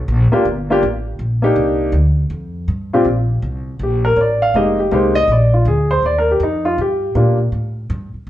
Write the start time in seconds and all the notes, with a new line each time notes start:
0.08 A#1
0.32 A#3 D4 F4 G4, muted upright bass stroke
0.45 G1
0.70 A#3 D4 F4 G4
0.83 A1
1.19 A#1
1.42 A#3 D4 D#4 G4
1.56 C2
1.92 D2
2.30 F2
2.68 G2
2.93 A#2 C4 D4 F4 G4
3.05 A#1
3.42 C2
3.79 A#1 G4
4.05 A#4
4.16 A1 C#5
4.21 D5
4.42 F5
4.54 F1 G#3 A#3 D#4 G4 D#5
4.80 G4
4.91 C2 G#3 A#3 D#4 G4 C5
5.15 D#5
5.28 A#1
5.32 D5
5.54 F4
5.65 D2 G#4
5.91 C5
6.02 D#2 D5
6.18 A#4
6.31 G4
6.40 F2 D#4
6.65 F4
6.78 G2 G4
7.15 A#2 A#3 D4 F4 G4
7.52 A2
7.90 G2
8.14 muted upright bass stroke